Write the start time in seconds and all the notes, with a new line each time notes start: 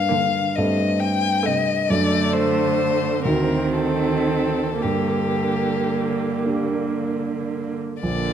Already playing: G2 A#3 D4 G4 F5
0.09 D3 A#3
0.55 G2 A3 C4 A4 D#5
1.00 G5
1.43 C3 A3 D#5
1.88 F#2 D3 A3 D4 A4 D5
2.33 C5
3.25 D2 D#3 C4 D#4 F#4 A#4
3.76 A4
4.81 G2 D3 A#3 G4
6.45 A#3 D4 G4
8.01 A#1 D3 A#3 D5